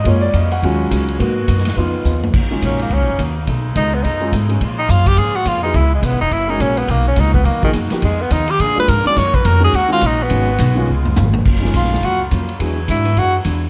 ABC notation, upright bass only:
X:1
M:4/4
L:1/8
Q:"Swing" 1/4=210
K:C#mix
V:1 name="Upright bass" clef=bass
F,,2 E,,2 D,,2 C,,2 | G,,2 F,,2 E,,2 D,,2 | [K:Ebm] G,,,2 B,,,2 (3D,, B,,, G,,, E,,2 | =B,,,2 ^C,,2 ^F,,2 ^G,,2 |
B,,2 G,,2 A,,2 F,,2 | D,,2 (3C,, A,,, _F,,, G,,,2 B,,,2 | =B,,,2 D,,2 ^D,,2 ^F,, z | F,,2 E,,2 B,, z A,, z |
G,,2 F,,2 E,,2 B,,,2 | A,,,2 C,,2 D,,2 A,,,2 | [K:F#] F,,,2 A,,,2 C,,2 E,,2 | =E,,2 G,,2 F,,2 E,,2 |]